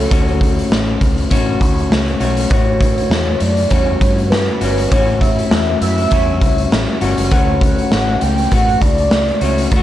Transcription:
0.00 0.10 A3 soft
0.00 0.11 C#4 soft
0.00 0.11 F#4 soft
0.00 0.72 A4 medium
0.11 0.59 D2 medium
0.11 1.30 A3 medium
0.11 1.31 C#4 medium
0.11 1.32 F#4 medium
0.11 kick loud
0.11 closed hi-hat medium
0.28 closed hi-hat soft
0.41 kick medium
0.41 closed hi-hat medium
0.59 closed hi-hat soft
0.71 0.95 A1 medium
0.71 snare loud
1.01 1.25 C#2 medium
1.01 kick medium
1.01 closed hi-hat medium
1.17 closed hi-hat soft
1.30 1.55 A1 loud
1.30 2.22 A3 medium
1.30 2.21 C#4 medium
1.30 2.20 F#4 medium
1.30 kick medium
1.30 closed hi-hat medium
1.61 1.85 D2 medium
1.61 kick medium
1.61 closed hi-hat medium
1.78 closed hi-hat soft
1.90 2.15 C#2 medium
1.90 snare medium
2.08 closed hi-hat soft
2.20 2.45 B1 medium
2.20 2.52 A3 soft
2.20 2.51 C#4 soft
2.20 2.51 F#4 soft
2.20 closed hi-hat medium
2.37 closed hi-hat medium
2.50 2.99 A1 medium
2.50 3.70 A2 medium
2.50 3.73 F#4 medium
2.50 3.43 C#5 medium
2.50 kick loud
2.50 closed hi-hat medium
2.81 kick medium
2.81 closed hi-hat medium
2.98 closed hi-hat soft
3.10 3.35 E2 medium
3.10 snare medium
3.40 3.65 F#2 medium
3.40 3.71 D5 medium
3.40 closed hi-hat medium
3.57 closed hi-hat soft
3.70 3.95 E2 medium
3.70 4.62 A2 medium
3.70 4.62 G3 medium
3.70 4.62 C#4 medium
3.70 4.31 C#5 medium
3.70 kick medium
3.70 closed hi-hat medium
3.74 4.61 F#4 medium
4.01 4.49 G2 medium
4.01 kick medium
4.01 closed hi-hat medium
4.18 closed hi-hat soft
4.30 4.90 B4 medium
4.30 snare medium
4.61 4.85 G1 medium
4.61 4.93 G3 soft
4.61 4.92 C#4 soft
4.61 4.91 F#4 soft
4.61 closed hi-hat medium
4.78 closed hi-hat soft
4.91 5.40 A1 medium
4.91 6.10 A2 medium
4.91 6.12 C#4 medium
4.91 5.19 C#5 medium
4.91 kick loud
4.91 closed hi-hat medium
4.95 6.13 F#4 medium
5.08 closed hi-hat soft
5.21 5.77 E5 loud
5.21 kick medium
5.21 closed hi-hat medium
5.39 closed hi-hat soft
5.51 5.75 E2 medium
5.51 snare loud
5.81 6.05 F#2 medium
5.81 6.98 E5 loud
5.81 closed hi-hat medium
5.98 closed hi-hat soft
6.11 6.43 E2 medium
6.11 7.02 A2 medium
6.11 7.02 G3 medium
6.11 7.02 C#4 medium
6.11 7.01 F#4 medium
6.11 kick medium
6.11 closed hi-hat medium
6.41 6.66 C#2 medium
6.41 kick medium
6.41 closed hi-hat medium
6.58 closed hi-hat soft
6.72 6.85 A1 medium
6.72 snare medium
7.01 7.15 G1 medium
7.01 7.31 G3 soft
7.01 7.32 C#4 soft
7.01 7.32 F#4 medium
7.01 closed hi-hat medium
7.18 7.29 F#1 medium
7.18 closed hi-hat medium
7.31 7.80 D2 medium
7.31 8.52 A3 medium
7.31 9.43 C#4 medium
7.31 8.24 F#5 loud
7.31 kick medium
7.31 closed hi-hat medium
7.61 kick medium
7.61 closed hi-hat medium
7.78 closed hi-hat soft
7.92 8.16 A1 medium
7.92 snare loud
8.21 8.46 C#2 medium
8.21 8.55 G5 loud
8.21 closed hi-hat medium
8.38 closed hi-hat soft
8.51 8.76 A1 medium
8.51 9.43 A3 medium
8.51 9.41 F#4 medium
8.51 8.83 F#5 medium
8.51 kick medium
8.51 closed hi-hat medium
8.69 closed hi-hat soft
8.81 9.30 C#2 medium
8.81 9.43 D5 loud
8.81 kick medium
8.81 closed hi-hat medium
8.98 closed hi-hat soft
9.11 snare loud
9.28 closed hi-hat soft
9.41 9.65 C#2 medium
9.41 9.73 A3 soft
9.41 9.73 C#4 soft
9.41 9.72 F#4 soft
9.41 9.74 C#5 medium
9.41 closed hi-hat medium
9.58 closed hi-hat soft
9.71 9.83 D2 medium
9.71 9.83 A3 medium
9.71 9.83 D5 loud
9.71 kick loud
9.71 closed hi-hat medium
9.76 9.83 F#4 medium

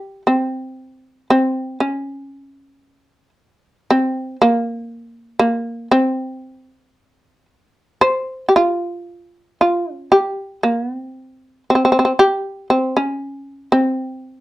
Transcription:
0.00 0.22 G4 medium
0.27 1.27 C4 medium
1.30 1.78 C4 medium
1.80 3.29 C#4 medium
3.90 4.36 C4 medium
4.42 5.38 A#3 medium
5.39 5.87 A#3 medium
5.91 7.45 C4 medium
8.01 8.45 C5 medium
8.49 8.56 G4 medium
8.56 9.58 F4 medium
9.61 9.94 F4 medium
9.94 10.09 C#4 medium
10.12 10.60 G4 medium
10.63 10.81 A#3 medium
10.81 10.93 B3 medium
10.93 11.63 C4 medium
11.70 11.74 C4 medium
11.75 11.82 C4 soft
11.85 11.91 C4 medium
11.92 11.98 C4 medium
11.99 12.04 C4 medium
12.05 12.11 C4 soft
12.19 12.67 G4 medium
12.70 12.94 C4 medium
12.97 13.70 C#4 medium
13.72 14.41 C4 medium

